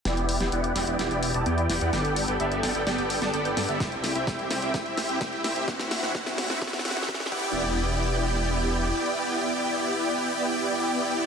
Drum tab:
CC |--------------------------------|--------------------------------|--------------------------------|----------------------------x---|
HH |x-x-o-x-x-x-o-x-x-x-o-x-x-x-o-x-|x-x-o-x-x-x-o-x-x-x-o-x-x-x-o-x-|x-x-o-x-x-x-o-x-x-x-o-x-x-x-o-x-|x-x-o---x-x-o-x-x-x-o-x-x-x-----|
SD |o-----o-----o---o-----------o---|o-----------o---o-----o-----o---|o---o---o---o---o---o---o---o---|o-o-o-o-o-o-o-o-oooooooooooo----|
BD |--------------------------------|--------------------------------|o-------o-------o-------o-------|o-------o-------o-------o---o---|

CC |--------------------------------|--------------------------------|
HH |--------------------------------|--------------------------------|
SD |--------------------------------|--------------------------------|
BD |--------------------------------|--------------------------------|